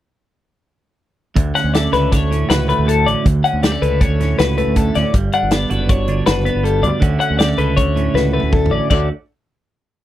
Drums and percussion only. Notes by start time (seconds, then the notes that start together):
1.36 kick, closed hi-hat
1.56 snare, closed hi-hat
1.74 snare, closed hi-hat
1.93 snare, closed hi-hat
2.12 kick, snare, closed hi-hat
2.32 closed hi-hat
2.50 snare, closed hi-hat
2.69 closed hi-hat
2.89 closed hi-hat
3.08 closed hi-hat
3.26 kick, closed hi-hat
3.45 closed hi-hat
3.63 snare, closed hi-hat
3.83 closed hi-hat
4.01 kick, closed hi-hat
4.20 snare, closed hi-hat
4.39 snare, closed hi-hat
4.58 closed hi-hat
4.76 kick, closed hi-hat
4.95 snare, closed hi-hat
5.14 kick, closed hi-hat
5.33 closed hi-hat
5.51 snare, closed hi-hat
5.70 closed hi-hat
5.89 kick, closed hi-hat
6.08 closed hi-hat
6.26 snare, closed hi-hat
6.46 closed hi-hat
6.65 closed hi-hat
6.84 closed hi-hat
7.02 kick, closed hi-hat
7.21 closed hi-hat
7.40 snare, closed hi-hat
7.58 closed hi-hat
7.77 kick, closed hi-hat
7.97 closed hi-hat
8.16 snare
8.40 high tom
8.52 kick, mid tom
8.66 mid tom
8.90 kick, crash